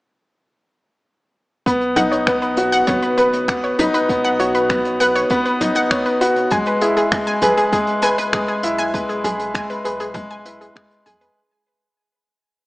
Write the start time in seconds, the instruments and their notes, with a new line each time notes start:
1.66 sub bass B1, upright piano B3, synth arpeggio sound B4, kick, closed hi-hat
1.81 closed hi-hat
1.96 upright piano D#4, synth arpeggio sound F#5, closed hi-hat, mid tom
2.12 synth arpeggio sound C#5, closed hi-hat
2.27 upright piano B3, synth arpeggio sound B4, finger snap, kick, closed hi-hat
2.42 synth arpeggio sound B4, closed hi-hat
2.57 upright piano F#4, closed hi-hat
2.72 synth arpeggio sound F#5, closed hi-hat
2.87 sub bass F#1, upright piano B3, synth arpeggio sound C#5, kick, closed hi-hat, mid tom
3.02 synth arpeggio sound B4, closed hi-hat
3.18 synth arpeggio sound B4, upright piano B4, closed hi-hat
3.33 closed hi-hat
3.48 upright piano B3, synth arpeggio sound F#5, finger snap, kick, closed hi-hat
3.63 synth arpeggio sound C#5, closed hi-hat
3.79 upright piano D#4, synth arpeggio sound B4, closed hi-hat, mid tom
3.94 synth arpeggio sound B4, closed hi-hat
4.09 sub bass B1, upright piano B3, kick, closed hi-hat
4.24 synth arpeggio sound F#5, closed hi-hat
4.39 upright piano F#4, synth arpeggio sound C#5, closed hi-hat
4.54 synth arpeggio sound B4, closed hi-hat
4.69 upright piano B3, synth arpeggio sound B4, finger snap, kick, closed hi-hat, mid tom
4.85 closed hi-hat
5.00 upright piano B4, synth arpeggio sound F#5, closed hi-hat
5.15 synth arpeggio sound C#5, closed hi-hat
5.30 upright piano B3, synth arpeggio sound B4, kick, closed hi-hat
5.45 synth arpeggio sound B4, closed hi-hat
5.61 upright piano D#4, closed hi-hat, mid tom
5.75 synth arpeggio sound F#5, closed hi-hat
5.91 upright piano B3, synth arpeggio sound C#5, finger snap, kick, closed hi-hat
6.06 synth arpeggio sound B4, closed hi-hat
6.21 upright piano F#4, synth arpeggio sound B4, closed hi-hat
6.36 closed hi-hat
6.50 upright piano G#3, synth arpeggio sound G#5, kick, closed hi-hat, mid tom
6.66 synth arpeggio sound B4, closed hi-hat
6.81 upright piano E4, synth arpeggio sound G#4, closed hi-hat
6.96 synth arpeggio sound G#4, closed hi-hat
7.12 upright piano G#3, finger snap, kick, closed hi-hat
7.27 synth arpeggio sound G#5, closed hi-hat
7.42 upright piano G#4, synth arpeggio sound B4, closed hi-hat, mid tom
7.57 synth arpeggio sound G#4, closed hi-hat
7.72 upright piano G#3, synth arpeggio sound G#4, kick, closed hi-hat
7.87 closed hi-hat
8.02 upright piano B4, synth arpeggio sound G#5, closed hi-hat
8.18 synth arpeggio sound B4, closed hi-hat
8.33 upright piano G#3, synth arpeggio sound G#4, finger snap, kick, closed hi-hat, mid tom
8.47 synth arpeggio sound G#4, closed hi-hat
8.63 sub bass B1, upright piano E4, closed hi-hat
8.78 synth arpeggio sound G#5, closed hi-hat
8.94 upright piano G#3, synth arpeggio sound B4, kick, closed hi-hat
9.09 synth arpeggio sound G#4, closed hi-hat
9.24 upright piano G#4, synth arpeggio sound G#4, closed hi-hat, mid tom
9.39 closed hi-hat
9.54 upright piano G#3, synth arpeggio sound G#5, finger snap, kick, closed hi-hat
9.70 synth arpeggio sound B4, closed hi-hat
9.84 sub bass B1, synth arpeggio sound G#4, upright piano B4, closed hi-hat
10.00 synth arpeggio sound G#4, closed hi-hat
10.14 upright piano G#3, kick, closed hi-hat, mid tom
10.31 synth arpeggio sound G#5, closed hi-hat
10.45 upright piano E4, synth arpeggio sound B4, closed hi-hat
10.61 synth arpeggio sound G#4, closed hi-hat
10.76 upright piano G#3, synth arpeggio sound G#4, finger snap, kick, closed hi-hat
10.91 closed hi-hat
11.05 sub bass E2, upright piano G#4, synth arpeggio sound G#5, closed hi-hat, mid tom
11.21 synth arpeggio sound B4, closed hi-hat